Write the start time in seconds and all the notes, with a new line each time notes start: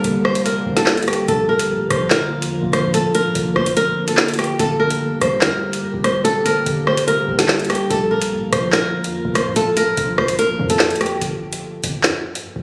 Already playing: D3 G3 A#3 G4 A#4, downlifter
0.04 G1, closed hi-hat
0.25 C5, cross-stick
0.35 F1, closed hi-hat
0.45 A#4, closed hi-hat
0.66 G1
0.77 A4, snare, closed hi-hat
0.86 snare, clap
0.97 D2, closed hi-hat
1.03 closed hi-hat
1.08 G4, cross-stick, closed hi-hat
1.13 G1, closed hi-hat
1.28 A#1 D3 F3 A#3 F4 A4, closed hi-hat
1.49 A#4
1.59 closed hi-hat
1.70 A#2
1.80 A#1
1.90 A#1 C5, cross-stick, closed hi-hat
2.11 A#4, snare, clap, closed hi-hat
2.42 F2, closed hi-hat
2.63 A#1
2.73 C5, cross-stick, closed hi-hat
2.84 A#2
2.94 A#1 A4, closed hi-hat
3.15 A#4, closed hi-hat
3.35 A#1, closed hi-hat
3.56 A#1 C5, cross-stick
3.66 closed hi-hat
3.77 A#4, closed hi-hat
4.08 A4, closed hi-hat
4.17 snare, clap
4.28 closed hi-hat
4.34 closed hi-hat
4.39 G4, cross-stick, closed hi-hat
4.44 closed hi-hat
4.59 G1 G3 G4 A4, closed hi-hat
4.80 A#4
4.90 closed hi-hat
5.21 G1 C5, cross-stick, closed hi-hat
5.41 G2 A#4, snare, clap, closed hi-hat
5.73 closed hi-hat
5.94 G1
6.04 C5, cross-stick, closed hi-hat
6.25 A4, closed hi-hat
6.45 A#4, closed hi-hat
6.66 G1, closed hi-hat
6.87 C5, cross-stick
6.97 F1, closed hi-hat
7.07 A#4, closed hi-hat
7.28 G1
7.39 A4, snare, closed hi-hat
7.48 snare, clap
7.59 D2, closed hi-hat
7.65 closed hi-hat
7.70 G4, cross-stick, closed hi-hat
7.75 G1, closed hi-hat
7.90 A#1 F3 F4 A4, closed hi-hat
8.11 A#4
8.22 closed hi-hat
8.32 A#2
8.42 A#1
8.53 A#1 C5, cross-stick, closed hi-hat
8.73 A#4, snare, clap, closed hi-hat
9.04 F2, closed hi-hat
9.25 A#1
9.35 C5, cross-stick, closed hi-hat
9.46 A#2
9.56 A#1 A4, closed hi-hat
9.77 A#4, closed hi-hat
9.97 A#1, closed hi-hat
10.18 A#1 C5, cross-stick
10.28 closed hi-hat
10.39 A#4, closed hi-hat
10.59 F2
10.70 A4, closed hi-hat
10.79 snare, clap
10.90 closed hi-hat
10.96 closed hi-hat
11.01 G4, cross-stick, closed hi-hat
11.06 closed hi-hat
11.21 G1, closed hi-hat
11.53 closed hi-hat
11.84 G1, closed hi-hat
12.04 G2, snare, clap, closed hi-hat
12.35 closed hi-hat
12.56 G1